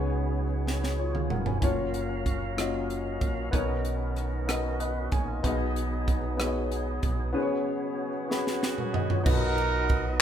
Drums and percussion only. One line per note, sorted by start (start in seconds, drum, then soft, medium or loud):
0.67 snare soft
0.84 snare soft
1.15 mid tom medium
1.30 mid tom medium
1.46 floor tom medium
1.62 kick medium
1.62 closed hi-hat medium
1.94 closed hi-hat soft
2.26 kick medium
2.26 closed hi-hat soft
2.58 cross-stick medium
2.58 closed hi-hat medium
2.90 closed hi-hat soft
3.21 kick medium
3.21 closed hi-hat soft
3.53 kick medium
3.53 closed hi-hat medium
3.85 closed hi-hat soft
4.16 cross-stick soft
4.16 closed hi-hat soft
4.49 cross-stick medium
4.49 closed hi-hat medium
4.80 closed hi-hat soft
5.12 kick medium
5.12 closed hi-hat soft
5.44 kick medium
5.44 closed hi-hat medium
5.76 closed hi-hat soft
6.08 kick medium
6.08 closed hi-hat soft
6.40 cross-stick medium
6.40 closed hi-hat medium
6.72 closed hi-hat soft
7.03 kick medium
7.03 closed hi-hat soft
8.31 snare soft
8.47 snare soft
8.63 snare medium
8.78 mid tom soft
8.94 floor tom medium
9.10 floor tom medium
9.26 kick loud
9.26 crash loud
9.58 ride soft
9.89 kick medium
9.89 ride soft